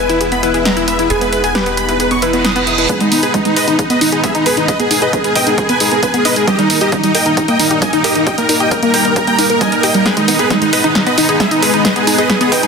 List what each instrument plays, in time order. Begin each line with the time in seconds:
Already playing: analog synth bass E1
0.00 analog synth pad G#3 B3 E4 B4, synth pluck B4
0.09 supersaw synth E4, synth arpeggio sound E4, closed hi-hat
0.21 analog synth pad G#3 B3 E4 B4, supersaw synth E4, synth arpeggio sound G#4, closed hi-hat
0.32 synth arpeggio sound B3, supersaw synth B5, closed hi-hat
0.43 analog synth pad G#3 B3 E4 B4, supersaw synth E4, synth arpeggio sound E4, synth pluck B4, closed hi-hat
0.54 analog synth pad G#3 B3 E4 B4, supersaw synth E4, synth arpeggio sound G#4, closed hi-hat
0.65 synth arpeggio sound G#3, supersaw synth A#5, snare, closed hi-hat
0.76 analog synth pad G#3 B3 E4 B4, supersaw synth E4, synth arpeggio sound E4, closed hi-hat
0.88 synth arpeggio sound B4, supersaw synth E5, closed hi-hat
0.99 analog synth pad G#3 B3 E4 B4, supersaw synth E4, synth arpeggio sound E4, closed hi-hat
1.10 analog synth bass E1, analog synth pad G#3 B3 D#4 B4, synth arpeggio sound G#4, synth pluck G#4, supersaw synth G#5, closed hi-hat
1.21 synth arpeggio sound B3, supersaw synth B4, closed hi-hat
1.33 analog synth pad G#3 B3 D#4 B4, synth arpeggio sound E4, supersaw synth B4, closed hi-hat
1.44 synth arpeggio sound G#4, supersaw synth G#5, closed hi-hat
1.55 analog synth pad G#3 B3 D#4 B4, synth pluck G4, supersaw synth B4, synth arpeggio sound B4, snare, closed hi-hat
1.66 analog synth pad G#3 B3 D#4 B4, synth arpeggio sound B3, supersaw synth B4, closed hi-hat
1.77 analog synth pad G#3 B3 D#4 B4, synth arpeggio sound B4, supersaw synth B5, closed hi-hat
1.89 synth arpeggio sound E4, supersaw synth B4, closed hi-hat
2.00 analog synth pad G#3 B3 D#4 B4, synth arpeggio sound G#4, supersaw synth B4, closed hi-hat, reverse cymbal
2.11 synth arpeggio sound B3, supersaw synth C#6, closed hi-hat
2.22 analog synth pad G#3 B3 D#4 B4, synth arpeggio sound E4, synth pluck E4, supersaw synth B4, closed hi-hat
2.33 analog synth pad G#3 B3 D#4 B4, synth arpeggio sound B3, supersaw synth B4, closed hi-hat
2.44 synth arpeggio sound B4, supersaw synth D#6, snare, closed hi-hat
2.56 analog synth pad G#3 B3 D#4 B4, synth arpeggio sound B3, supersaw synth B4, closed hi-hat
2.67 synth arpeggio sound E4, supersaw synth D#6, closed hi-hat
2.78 analog synth pad G#3 B3 D#4 B4, synth arpeggio sound E4, supersaw synth B4, closed hi-hat
2.89 analog synth pad G#3 B3 D#4 B4, synth arpeggio sound G#3, supersaw synth G#4 B4, kick, closed hi-hat
3.01 synth arpeggio sound G#3, supersaw synth D#4, closed hi-hat
3.12 analog synth pad G#3 B3 D#4 B4, synth arpeggio sound B3, supersaw synth D#4, open hi-hat
3.23 supersaw synth G#4 B4, synth arpeggio sound G#4, closed hi-hat
3.34 analog synth pad G#3 B3 D#4 B4, synth arpeggio sound G#3, supersaw synth D#4, kick, closed hi-hat
3.45 analog synth pad G#3 B3 D#4 B4, synth arpeggio sound G#3, supersaw synth D#4, closed hi-hat
3.56 analog synth pad G#3 B3 D#4 B4, supersaw synth B4 D#5, synth arpeggio sound B4, open hi-hat
3.68 synth arpeggio sound D#4, supersaw synth D#4, closed hi-hat
3.79 analog synth pad G#3 B3 D#4 B4, supersaw synth D#4, synth arpeggio sound G#4, kick, closed hi-hat
3.90 synth arpeggio sound B3, supersaw synth B4 D#5, closed hi-hat
4.01 analog synth pad G#3 B3 D#4 B4, synth arpeggio sound D#4, supersaw synth D#4, open hi-hat
4.12 analog synth pad G#3 B3 D#4 B4, supersaw synth D#4, synth arpeggio sound G#4, closed hi-hat
4.24 synth arpeggio sound G#3, supersaw synth G#4 E5, kick, closed hi-hat
4.35 analog synth pad G#3 B3 D#4 B4, synth arpeggio sound D#4, supersaw synth D#4, closed hi-hat
4.46 supersaw synth G#4 B4, synth arpeggio sound B4, open hi-hat
4.57 analog synth pad G#3 B3 D#4 B4, synth arpeggio sound D#4, supersaw synth D#4, closed hi-hat
4.68 analog synth pad G#3 B3 D#4 A#4, synth arpeggio sound G#4, supersaw synth B4 D#5, kick, closed hi-hat
4.80 synth arpeggio sound B3, supersaw synth G#4, closed hi-hat
4.91 analog synth pad G#3 B3 D#4 A#4, synth arpeggio sound D#4, supersaw synth G#4, open hi-hat
5.02 synth arpeggio sound G#4, supersaw synth B4 D#5, closed hi-hat
5.13 analog synth pad G#3 B3 D#4 A#4, supersaw synth G#4, synth arpeggio sound B4, kick, closed hi-hat
5.24 analog synth pad G#3 B3 D#4 A#4, synth arpeggio sound B3, supersaw synth G#4, closed hi-hat
5.35 analog synth pad G#3 B3 D#4 A#4, synth arpeggio sound B4, supersaw synth D#5 G5, kick, open hi-hat
5.47 synth arpeggio sound D#4, supersaw synth G#4, closed hi-hat
5.58 analog synth pad G#3 B3 D#4 A#4, synth arpeggio sound G#4, supersaw synth G#4, kick, closed hi-hat
5.69 synth arpeggio sound B3, supersaw synth B4 G#5, closed hi-hat
5.80 analog synth pad G#3 B3 D#4 A#4, synth arpeggio sound D#4, supersaw synth G#4, open hi-hat
5.91 analog synth pad G#3 B3 D#4 A#4, synth arpeggio sound B3, supersaw synth G#4, closed hi-hat
6.03 synth arpeggio sound B4, supersaw synth B4 G#5, kick, closed hi-hat
6.14 analog synth pad G#3 B3 D#4 A#4, synth arpeggio sound B3, supersaw synth G#4, closed hi-hat
6.25 synth arpeggio sound D#4, supersaw synth B4 D#5, open hi-hat
6.36 analog synth pad G#3 B3 D#4 A#4, synth arpeggio sound D#4, supersaw synth G#4, closed hi-hat
6.47 synth arpeggio sound G3, analog synth pad G3 A#3 D#4 A#4, supersaw synth G4 D#5, kick, closed hi-hat
6.59 synth arpeggio sound G3, supersaw synth D#4, closed hi-hat
6.70 analog synth pad G3 A#3 D#4 A#4, synth arpeggio sound A#3, supersaw synth D#4, open hi-hat
6.81 synth arpeggio sound G4, supersaw synth G4 D#5, closed hi-hat
6.92 synth arpeggio sound G3, analog synth pad G3 A#3 D#4 A#4, supersaw synth D#4, kick, closed hi-hat
7.03 synth arpeggio sound G3, analog synth pad G3 A#3 D#4 A#4, supersaw synth D#4, closed hi-hat
7.15 analog synth pad G3 A#3 D#4 A#4, synth arpeggio sound A#4, supersaw synth D#5 G5, open hi-hat
7.26 synth arpeggio sound D#4, supersaw synth D#4, closed hi-hat
7.37 analog synth pad G3 A#3 D#4 A#4, supersaw synth D#4, synth arpeggio sound G4, kick, closed hi-hat
7.48 synth arpeggio sound A#3, supersaw synth D#5 G5, closed hi-hat
7.59 analog synth pad G3 A#3 D#4 A#4, supersaw synth D#4, synth arpeggio sound D#4, open hi-hat
7.71 analog synth pad G3 A#3 D#4 A#4, supersaw synth D#4, synth arpeggio sound G4, closed hi-hat
7.82 synth arpeggio sound G3, supersaw synth D#5 G#5, kick, closed hi-hat
7.93 analog synth pad G3 A#3 D#4 A#4, synth arpeggio sound D#4, supersaw synth D#4, closed hi-hat
8.04 supersaw synth G4 D#5, synth arpeggio sound A#4, open hi-hat
8.15 analog synth pad G3 A#3 D#4 A#4, supersaw synth D#4, synth arpeggio sound D#4, closed hi-hat
8.26 analog synth pad G3 A#3 D#4 A#4, synth arpeggio sound G4, supersaw synth D#5 G5, kick, closed hi-hat
8.38 synth arpeggio sound A#3, supersaw synth A#4, closed hi-hat
8.49 analog synth pad G3 A#3 D#4 A#4, synth arpeggio sound D#4, supersaw synth A#4, open hi-hat
8.60 synth arpeggio sound G4, supersaw synth D#5 G5, closed hi-hat
8.71 analog synth pad G3 A#3 D#4 A#4, supersaw synth A#4, synth arpeggio sound A#4, kick, closed hi-hat
8.82 analog synth pad G3 A#3 D#4 A#4, synth arpeggio sound A#3, supersaw synth A#4, closed hi-hat
8.94 analog synth pad G3 A#3 D#4 A#4, synth arpeggio sound A#4, supersaw synth G5 A#5, kick, open hi-hat
9.05 synth arpeggio sound D#4, supersaw synth A#4, closed hi-hat
9.16 analog synth pad G3 A#3 D#4 A#4, synth arpeggio sound G4, supersaw synth A#4, kick, closed hi-hat
9.27 synth arpeggio sound A#3, supersaw synth G5 A#5, closed hi-hat
9.38 analog synth pad G3 A#3 D#4 A#4, synth arpeggio sound D#4, supersaw synth A#4, open hi-hat
9.50 analog synth pad G3 A#3 D#4 A#4, supersaw synth A#4, synth arpeggio sound A#4, closed hi-hat
9.61 synth arpeggio sound G3, supersaw synth D#5 G#5, kick, closed hi-hat
9.72 analog synth pad G3 A#3 D#4 A#4, synth arpeggio sound A#4, supersaw synth A#4, closed hi-hat
9.83 synth arpeggio sound G4, supersaw synth D#5 G5, open hi-hat
9.94 analog synth pad G3 A#3 D#4 A#4, synth arpeggio sound G3, supersaw synth A#4, closed hi-hat
10.06 analog synth pad G#3 B3 D#4 B4, synth arpeggio sound G#3, supersaw synth G#4 B4, kick, snare, closed hi-hat, riser
10.17 synth arpeggio sound G#3, supersaw synth D#4, closed hi-hat
10.28 analog synth pad G#3 B3 D#4 B4, synth arpeggio sound B3, supersaw synth D#4, open hi-hat
10.39 synth arpeggio sound G#4, supersaw synth G#4 B4, closed hi-hat
10.50 analog synth pad G#3 B3 D#4 B4, synth arpeggio sound G#3, supersaw synth D#4, kick, snare, closed hi-hat
10.61 analog synth pad G#3 B3 D#4 B4, synth arpeggio sound G#3, supersaw synth D#4, closed hi-hat
10.73 analog synth pad G#3 B3 D#4 B4, synth arpeggio sound B4, supersaw synth B4 D#5, open hi-hat
10.84 synth arpeggio sound D#4, supersaw synth D#4, closed hi-hat
10.95 analog synth pad G#3 B3 D#4 B4, supersaw synth D#4, synth arpeggio sound G#4, kick, snare, closed hi-hat
11.06 synth arpeggio sound B3, supersaw synth B4 D#5, closed hi-hat
11.18 analog synth pad G#3 B3 D#4 B4, synth arpeggio sound D#4, supersaw synth D#4, open hi-hat
11.29 analog synth pad G#3 B3 D#4 B4, supersaw synth D#4, synth arpeggio sound G#4, closed hi-hat
11.40 synth arpeggio sound G#3, supersaw synth G#4 E5, kick, snare, closed hi-hat
11.51 analog synth pad G#3 B3 D#4 B4, supersaw synth D#4, synth arpeggio sound D#4, closed hi-hat
11.62 supersaw synth G#4 B4, synth arpeggio sound B4, open hi-hat
11.73 analog synth pad G#3 B3 D#4 B4, supersaw synth D#4, synth arpeggio sound D#4, closed hi-hat
11.84 analog synth pad G#3 B3 D#4 B4, synth arpeggio sound G#4, supersaw synth B4 D#5, kick, snare, closed hi-hat
11.96 synth arpeggio sound B3, supersaw synth G#4, closed hi-hat
12.07 analog synth pad G#3 B3 D#4 B4, synth arpeggio sound D#4, supersaw synth G#4, open hi-hat
12.18 synth arpeggio sound G#4, supersaw synth B4 D#5, closed hi-hat
12.29 analog synth pad G#3 B3 D#4 B4, supersaw synth G#4, synth arpeggio sound B4, kick, snare, closed hi-hat
12.41 analog synth pad G#3 B3 D#4 B4, synth arpeggio sound B3, supersaw synth G#4, closed hi-hat
12.52 analog synth pad G#3 B3 D#4 B4, synth arpeggio sound B4, supersaw synth D#5 G5, kick, open hi-hat
12.63 synth arpeggio sound D#4, supersaw synth G#4, closed hi-hat